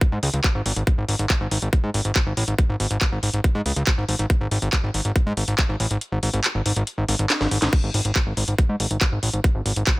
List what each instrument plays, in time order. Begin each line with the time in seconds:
0.01 kick, closed hi-hat
0.12 analog synth bass G#2
0.23 analog synth bass C#2, open hi-hat
0.34 analog synth bass C#2, closed hi-hat
0.44 kick, clap, closed hi-hat
0.55 analog synth bass G#1
0.66 analog synth bass G#1, open hi-hat
0.76 analog synth bass G#1, closed hi-hat
0.87 kick, closed hi-hat
0.98 analog synth bass G#1
1.08 analog synth bass G#1, open hi-hat
1.19 analog synth bass G#1, closed hi-hat
1.30 kick, clap, closed hi-hat
1.41 analog synth bass G#1
1.51 analog synth bass G#1, open hi-hat
1.62 analog synth bass G#1, closed hi-hat
1.73 kick, closed hi-hat
1.84 analog synth bass G#2
1.94 analog synth bass G#1, open hi-hat
2.05 analog synth bass G#1, closed hi-hat
2.16 kick, clap, closed hi-hat
2.26 analog synth bass G#1
2.37 analog synth bass A1, open hi-hat
2.48 analog synth bass G#1, closed hi-hat
2.58 kick, closed hi-hat
2.69 analog synth bass G#1
2.80 analog synth bass G#1, open hi-hat
2.91 analog synth bass G#1, closed hi-hat
3.01 kick, clap, closed hi-hat
3.12 analog synth bass G#1
3.23 analog synth bass G#1, open hi-hat
3.33 analog synth bass G#1, closed hi-hat
3.44 kick, closed hi-hat
3.55 analog synth bass G#2
3.66 analog synth bass C#2, open hi-hat
3.76 analog synth bass C#2, closed hi-hat
3.87 kick, clap, closed hi-hat
3.98 analog synth bass G#1
4.08 analog synth bass G#1, open hi-hat
4.19 analog synth bass G#1, closed hi-hat
4.30 kick, closed hi-hat
4.41 analog synth bass G#1
4.51 analog synth bass G#1, open hi-hat
4.62 analog synth bass G#1, closed hi-hat
4.73 kick, clap, closed hi-hat
4.83 analog synth bass G#1
4.94 analog synth bass G#1, open hi-hat
5.05 analog synth bass G#1, closed hi-hat
5.16 kick, closed hi-hat
5.26 analog synth bass G#2
5.37 analog synth bass G#1, open hi-hat
5.48 analog synth bass G#1, closed hi-hat
5.58 kick, clap, closed hi-hat
5.69 analog synth bass G#1
5.80 analog synth bass A1, open hi-hat
5.91 analog synth bass G#1, closed hi-hat
6.01 closed hi-hat
6.12 analog synth bass G#1
6.23 analog synth bass G#1, open hi-hat
6.33 analog synth bass G#1, closed hi-hat
6.44 clap, closed hi-hat
6.55 analog synth bass G#1
6.66 analog synth bass G#1, open hi-hat
6.76 analog synth bass G#1, closed hi-hat
6.87 closed hi-hat
6.98 analog synth bass G#1
7.08 analog synth bass G#1, open hi-hat
7.19 analog synth bass G#1, closed hi-hat
7.30 snare, clap, closed hi-hat
7.41 analog synth bass G#1, snare
7.51 analog synth bass G#1, open hi-hat
7.62 analog synth bass G#1, snare, closed hi-hat
7.73 kick, closed hi-hat, crash
7.83 analog synth bass G#1
7.94 analog synth bass G#1, open hi-hat
8.05 analog synth bass G#1, closed hi-hat
8.16 kick, clap, closed hi-hat
8.26 analog synth bass G#1
8.37 analog synth bass G#1, open hi-hat
8.48 analog synth bass G#1, closed hi-hat
8.58 kick, closed hi-hat
8.69 analog synth bass G#2
8.80 analog synth bass G#1, open hi-hat
8.91 analog synth bass G#1, closed hi-hat
9.01 kick, clap, closed hi-hat
9.12 analog synth bass G#1
9.23 analog synth bass A1, open hi-hat
9.33 analog synth bass G#1, closed hi-hat
9.44 kick, closed hi-hat
9.55 analog synth bass G#1
9.66 analog synth bass G#1, open hi-hat
9.76 analog synth bass G#1, closed hi-hat
9.87 kick, clap, closed hi-hat